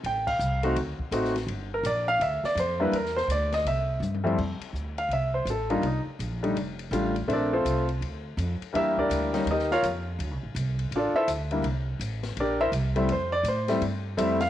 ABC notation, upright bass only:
X:1
M:4/4
L:1/8
Q:"Swing" 1/4=166
K:Cmix
V:1 name="Upright bass" clef=bass
A,,,2 C,,2 D,, z A,,,2 | G,,,2 B,,,2 D,, z F,,2 | E,,2 D,,2 C,,2 G,,2 | [K:F] F,, z D,,2 C,,2 A,,,2 |
C,, z B,,,2 F,,,2 A,,,2 | B,,,2 C,,2 D,,2 F,, z | E,,2 D,,2 _E,,2 F,,2 | (3D,, C,, A,,, C,,2 A,,, z D,,2 |
C,,2 A,,,2 B,,,2 C,,2 | F,,2 A,,2 G,,2 F,,2 |]